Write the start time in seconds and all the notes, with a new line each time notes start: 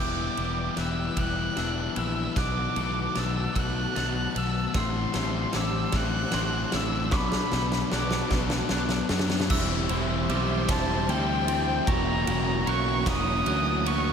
Already playing: E1 E2 E3 E4 B4 D5 G5
0.00 G3 B3 E4 D6 G6
0.37 E1 E3 G3 B3 E4, ride
0.77 E1 E3 G3 B3 E4 E6 F#6, snare, ride
1.17 E1 E3 G3 B3 E4 F#6, kick, ride
1.56 E1 E3 G3 B3 D4 E4 E6, snare, ride
1.96 A#1 E3 G3 B3 E4 E6, ride
2.35 B1 B2 D#3 F#3 B3 D#4 F#4 F#5 A5 D6 F#6, kick, snare, ride
2.76 B1 B2 D#3 F#3 A3 B3 D#4, ride
3.15 B1 B2 D#3 F#3 B3 D#4 E6 A6, snare, ride
3.55 B1 B2 D#3 F#3 A3 B3 D#4, kick, ride
3.59 F#6
3.95 B1 B2 D#3 F#3 B3 D#4 A6, snare, ride
4.35 B1 B2 D#3 F#3 B3 D#4 E6, ride
4.74 A1 A2 E3 A3 C4 E4 G4 C5 C6 E6, kick, snare, ride
5.14 A1 A2 E3 G3 A3 C4 E4, snare, ride
5.53 A1 A2 E3 A3 C4 E4 D6 E6, snare, ride
5.92 A1 A2 E3 G3 A3 C4 E4 F#6, kick, snare, ride
6.32 A1 A2 E3 C4 C6, snare, ride
6.36 A3 E4
6.72 A1 A2 E3 A3 C4 E4 E6, snare, ride
7.11 B1 B2 F#3 B3 D4 F#4 B4 D5 A5 B5 D6, kick, snare
7.32 snare
7.52 B1 B2 F#3 A3 B3 D4, snare
7.72 snare
7.92 B1 B2 F#3 B3 D4 D6 F#6, snare
8.11 snare
8.31 B1 B2 F#3 A3 B3 D4, kick, snare
8.50 snare
8.69 B1 B2 F#3 B3 D4 F#6, snare
8.89 snare
9.09 F#2 B2 F#3 B3 D4, snare
9.19 snare
9.30 snare
9.40 snare
9.50 E1 E3 G3 C4 E4 G4 C5 E5 C6 E6, kick, crash
9.89 E1 E3 G3 C4 E4 C5, ride
10.29 B1 E3 G3 C4 E4 C5 D6, ride
10.68 E1 E3 G3 C4 E4 C5 A5, kick, snare, ride
11.08 D2 E3 G3 C4 E4 C5 G5 C6, ride
11.47 G3 C4 E4 C5, ride
11.87 E1 E3 F#3 A#3 C#4 F#4 C#5 E5 A#5 C#6, kick, ride
12.27 E1 E3 A#3 C#4 F#4, ride
12.66 B1 E3 F#3 A#3 C#4 F#4 C#6 F#6, ride
13.05 E1 E3 A#3 C#4 F#4 D#6, kick, snare, ride
13.45 D2 E3 F#3 A#3 C#4 F#4 F#6, ride
13.84 A#3 C#4 F#4 C#6, ride